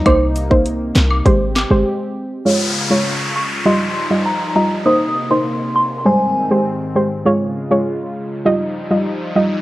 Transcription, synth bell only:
\new Staff \with { instrumentName = "Synth bell" } { \time 4/4 \key aes \major \tempo 4 = 100 r1 | f'''8 r16 des'''8 r16 des'''8 c'''8. r16 bes''16 r16 bes''16 r16 | ees'''8 r16 c'''8 r16 c'''8 aes''8. r4 r16 | r1 | }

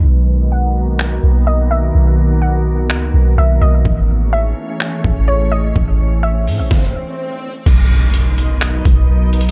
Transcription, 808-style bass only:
\new Staff \with { instrumentName = "808-style bass" } { \clef bass \time 4/4 \key b \major \tempo 4 = 126 b,,2~ b,,8 b,,4. | b,,2 cis,8 b,,8 b,,8 b,,8 | a,,4. r4 a,,4. | a,,4. a,16 a,,16 r2 |
b,,2~ b,,8 b,,4. | }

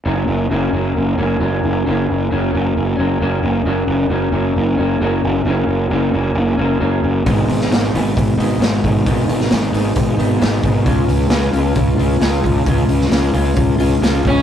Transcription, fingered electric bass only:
\new Staff \with { instrumentName = "Fingered electric bass" } { \clef bass \time 4/4 \key fis \major \tempo 4 = 133 fis,,8 fis,,8 fis,,8 fis,,8 fis,,8 fis,,8 fis,,8 fis,,8 | fis,,8 fis,,8 fis,,8 fis,,8 fis,,8 fis,,8 fis,,8 fis,,8 | fis,,8 fis,,8 fis,,8 fis,,8 fis,,8 fis,,8 fis,,8 fis,,8 | fis,,8 fis,,8 fis,,8 fis,,8 fis,,8 fis,,8 fis,,8 fis,,8 |
gis,,8 gis,,8 gis,,8 gis,,8 gis,,8 gis,,8 gis,,8 gis,,8 | gis,,8 gis,,8 gis,,8 gis,,8 gis,,8 gis,,8 gis,,8 gis,,8 | cis,8 cis,8 cis,8 cis,8 cis,8 cis,8 cis,8 cis,8 | cis,8 cis,8 cis,8 cis,8 cis,8 cis,8 cis,8 cis,8 | }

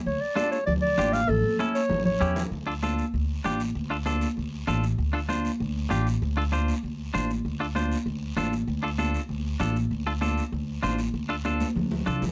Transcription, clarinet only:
\new Staff \with { instrumentName = "Clarinet" } { \time 4/4 \key a \phrygian \tempo 4 = 195 cis''8 d''8 d''8 cis''8 d''8 d''4 f''8 | a'4 r8 cis''4 cis''4 r8 | \key d \minor r1 | r1 |
r1 | r1 | r1 | r1 |
r1 | r1 | }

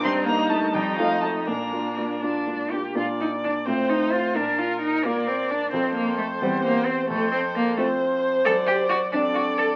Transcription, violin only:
\new Staff \with { instrumentName = "Violin" } { \time 6/8 \key bes \major \tempo 4. = 87 c'''8 bes''8 a''8 g''8 f''8 a''8 | bes''4. r4. | r4. c''4. | bes'2. |
a'4. c''4. | a'4. c''4.~ | \key d \phrygian c''4. a'4. | }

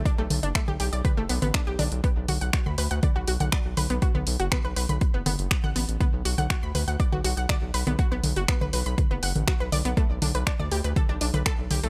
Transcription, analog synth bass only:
\new Staff \with { instrumentName = "Analog synth bass" } { \clef bass \time 4/4 \key b \minor \tempo 4 = 121 r16 b,,16 b,,16 fis,,16 r16 b,,16 b,,16 b,,16 r16 fis,,16 b,,16 a,,16 r16 b,,16 b,,16 b,,16 | r16 b,,16 b,,16 b,,16 r16 d,16 d,16 d,16 r16 b,,16 b,,16 b,,16 r16 b,,16 b,,16 b,,16 | r16 b,,16 b,,16 fis,,16 r16 b,,16 b,,16 b,,16 r16 fis,,16 fis,,16 fis,,16 r16 a,,16 a,,16 a,,16 | r16 b,,16 b,,16 b,,16 r16 d,16 d,16 d,16 r16 b,,16 b,,16 b,,16 r16 b,,16 b,,16 b,,16 |
r16 b,,16 b,,16 fis,,16 r16 b,,16 b,,16 b,,16 r16 fis,,16 fis,,16 a,,16 r16 b,,16 b,,16 b,,16 | r16 b,,16 b,,16 b,,16 r16 d,16 d,16 d,16 r16 b,,16 b,,16 b,,16 r16 b,,16 b,,16 b,,16 | }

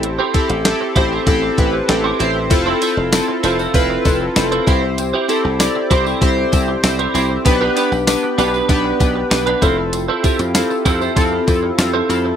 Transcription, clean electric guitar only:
\new Staff \with { instrumentName = "Clean electric guitar" } { \time 4/4 \key f \lydian \tempo 4 = 97 r16 <e' g' c''>16 <e' g' c''>16 r8. <e' g' c''>16 <e' g' c''>16 r4 r16 <e' g' c''>16 <e' g' c''>16 r16 | r16 <e' a' c''>16 <e' a' c''>16 r8. <e' a' c''>16 <e' a' c''>16 r4 r16 <e' a' c''>16 <e' g' c''>16 r16 | r16 <e' g' c''>16 <e' g' c''>16 r8. <e' g' c''>16 <e' g' c''>16 r4 r16 <e' g' c''>16 <e' g' c''>16 r16 | r16 <d' g' b'>16 <d' g' b'>16 r8. <d' g' b'>16 <d' g' b'>16 r4 r16 <d' g' b'>16 <e' a' c''>16 r16 |
r16 <e' a' c''>16 <e' a' c''>16 r8. <e' a' c''>16 <e' a' c''>16 r4 r16 <e' a' c''>16 r8 | }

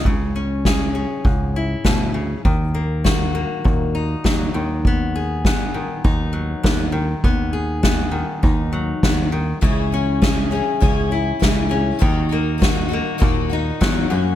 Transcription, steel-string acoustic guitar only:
\new Staff \with { instrumentName = "Steel-string acoustic guitar" } { \time 4/4 \key cis \dorian \tempo 4 = 100 << { r8 cis'8 gis'8 cis'4 e'4. | r8 ais8 fis'8 ais4 dis'4 r8 | b8 gis'8 b4 dis'4 b8 r8 | b8 gis'8 b4 dis'4 b8 r8 |
r8 cis'8 gis'8 cis'4 e'4 cis'8 | r8 ais8 fis'8 ais4 dis'4 r8 | } \\ { cis2 gis,4 b,8 cis8 | dis2 ais,4 fis8 dis8~ | dis4. dis4 fis4 dis8~ | dis4. dis4 fis4 dis8 |
cis2 gis,4 e4 | dis2 ais,4 fis8 fis,8 | } >> }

